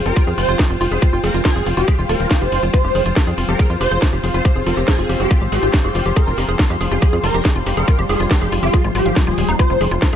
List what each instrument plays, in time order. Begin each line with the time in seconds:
Already playing: ambient pad F3 G3, string section F4 C5 F5 G5
0.06 analog synth bass F1, synth arpeggio sound F4, digital synth lead A#4, closed hi-hat
0.16 synth arpeggio sound F4, kick, closed hi-hat
0.27 analog synth bass F2, synth arpeggio sound G#4
0.38 analog synth bass F1, synth arpeggio sound F4, digital synth lead C5, open hi-hat
0.49 analog synth bass F1, synth arpeggio sound F4, closed hi-hat
0.59 synth arpeggio sound G#4, kick, snare, closed hi-hat
0.70 analog synth bass F1, synth arpeggio sound F4
0.81 analog synth bass F1, synth arpeggio sound F4, open hi-hat
0.91 analog synth bass F1, synth arpeggio sound G#4, digital synth lead C5, closed hi-hat
1.02 synth arpeggio sound F4, kick, closed hi-hat
1.13 analog synth bass F1, synth arpeggio sound F4
1.24 analog synth bass F1, synth arpeggio sound G#4, digital synth lead A#4, open hi-hat
1.34 analog synth bass F1, synth arpeggio sound F4, closed hi-hat
1.45 synth arpeggio sound F4, digital synth lead G#4, kick, snare, closed hi-hat
1.56 analog synth bass F1, synth arpeggio sound G#4, closed hi-hat
1.66 analog synth bass F1, synth arpeggio sound F4, open hi-hat
1.77 analog synth bass F1, synth arpeggio sound F4, digital synth lead G4, closed hi-hat
1.88 synth arpeggio sound G#4, kick, closed hi-hat, swell
1.99 analog synth bass D#1, synth arpeggio sound F4
2.09 analog synth bass D#1, synth arpeggio sound F4, digital synth lead A#4, open hi-hat
2.20 analog synth bass D#1, closed hi-hat
2.31 synth arpeggio sound F4, kick, snare, closed hi-hat
2.41 analog synth bass F1, synth arpeggio sound G4, digital synth lead C5, closed hi-hat
2.52 analog synth bass F1, open hi-hat
2.63 analog synth bass F1, synth arpeggio sound F4, closed hi-hat
2.74 ambient pad F3 C4, synth arpeggio sound F4, digital synth lead C5, kick, closed hi-hat
2.84 analog synth bass F1, synth arpeggio sound G4
2.95 analog synth bass F1, synth arpeggio sound G#4, open hi-hat
3.06 analog synth bass F1, synth arpeggio sound F4, closed hi-hat
3.16 synth arpeggio sound G4, kick, snare, closed hi-hat
3.27 analog synth bass F2, synth arpeggio sound G#4, closed hi-hat
3.38 analog synth bass F1, synth arpeggio sound F4, open hi-hat
3.49 analog synth bass F1, synth arpeggio sound G4, digital synth lead A#4, closed hi-hat
3.59 synth arpeggio sound G#4, kick, closed hi-hat
3.66 analog synth bass F2, synth arpeggio sound F4, string section C6
3.81 analog synth bass F1, synth arpeggio sound G4, digital synth lead C5, open hi-hat
3.91 analog synth bass F1, synth arpeggio sound G#4, closed hi-hat
4.02 synth arpeggio sound F4, kick, snare, closed hi-hat
4.13 analog synth bass F1, synth arpeggio sound G4
4.24 analog synth bass F1, synth arpeggio sound G#4, open hi-hat
4.34 analog synth bass F1, synth arpeggio sound F4, digital synth lead C5, closed hi-hat
4.45 synth arpeggio sound G4, kick, closed hi-hat
4.56 analog synth bass F1, synth arpeggio sound G#4
4.66 analog synth bass F1, synth arpeggio sound F4, digital synth lead A#4, open hi-hat
4.77 analog synth bass F1, synth arpeggio sound G4, closed hi-hat
4.88 digital synth lead G#4, synth arpeggio sound G#4, kick, snare, closed hi-hat
4.99 analog synth bass F1, synth arpeggio sound F4, closed hi-hat
5.09 analog synth bass F1, synth arpeggio sound G4, open hi-hat
5.20 analog synth bass F1, digital synth lead G4, synth arpeggio sound G#4, closed hi-hat
5.31 synth arpeggio sound F4, kick, closed hi-hat
5.41 analog synth bass G#1, synth arpeggio sound G4
5.52 analog synth bass G#1, digital synth lead G4, synth arpeggio sound G#4, open hi-hat
5.63 analog synth bass G#1, synth arpeggio sound F4, closed hi-hat
5.74 synth arpeggio sound G4, kick, snare, closed hi-hat
5.84 analog synth bass F1, digital synth lead G4, synth arpeggio sound G#4
5.95 analog synth bass F1, synth arpeggio sound F4, open hi-hat
6.06 analog synth bass F1, synth arpeggio sound G4, closed hi-hat
6.16 ambient pad G3, synth arpeggio sound G#4, digital synth lead A#4, kick, closed hi-hat
6.27 analog synth bass F1, synth arpeggio sound F4
6.38 analog synth bass F1, synth arpeggio sound G4, open hi-hat
6.49 analog synth bass F1, synth arpeggio sound G#4, closed hi-hat
6.59 synth arpeggio sound F4, kick, snare, closed hi-hat
6.70 analog synth bass F2, synth arpeggio sound G4, closed hi-hat
6.81 analog synth bass F1, synth arpeggio sound G#4, open hi-hat
6.91 analog synth bass F1, synth arpeggio sound F4, digital synth lead G#4, closed hi-hat
7.02 synth arpeggio sound G4, kick, closed hi-hat
7.13 analog synth bass F2, synth arpeggio sound G#4
7.24 analog synth bass F1, synth arpeggio sound F4, digital synth lead A#4, open hi-hat
7.34 analog synth bass F1, synth arpeggio sound G4, closed hi-hat
7.45 synth arpeggio sound G#4, kick, snare, closed hi-hat
7.56 analog synth bass F1, synth arpeggio sound F4
7.66 analog synth bass F1, synth arpeggio sound G4, open hi-hat
7.77 analog synth bass F1, synth arpeggio sound G#4, digital synth lead A#4, closed hi-hat
7.88 synth arpeggio sound F4, kick, closed hi-hat
7.99 analog synth bass F1, synth arpeggio sound G4
8.09 analog synth bass F1, digital synth lead G#4, synth arpeggio sound G#4, open hi-hat
8.20 analog synth bass F1, synth arpeggio sound F4, closed hi-hat
8.31 digital synth lead G4, synth arpeggio sound G4, kick, snare, closed hi-hat
8.41 analog synth bass F1, synth arpeggio sound G#4, closed hi-hat
8.52 analog synth bass F1, synth arpeggio sound F4, open hi-hat
8.63 analog synth bass F1, digital synth lead F4, synth arpeggio sound G4, closed hi-hat
8.74 synth arpeggio sound G#4, kick, closed hi-hat
8.84 analog synth bass G#1, synth arpeggio sound F4, closed hi-hat
8.95 analog synth bass G#1, synth arpeggio sound F4, digital synth lead G4, open hi-hat
9.06 analog synth bass G#1, synth arpeggio sound F5, closed hi-hat
9.16 synth arpeggio sound F4, kick, snare, closed hi-hat
9.27 analog synth bass D#1, synth arpeggio sound F4, digital synth lead G#4, closed hi-hat
9.38 analog synth bass D#1, open hi-hat
9.49 analog synth bass D#1, synth arpeggio sound D#4, closed hi-hat
9.59 ambient pad C4, synth arpeggio sound F4, digital synth lead C5, kick, closed hi-hat
9.70 analog synth bass F1, synth arpeggio sound F4
9.81 analog synth bass F1, synth arpeggio sound G#4, open hi-hat
9.91 analog synth bass F1, synth arpeggio sound F4, closed hi-hat
10.02 synth arpeggio sound F4, kick, snare, closed hi-hat
10.13 analog synth bass F2, closed hi-hat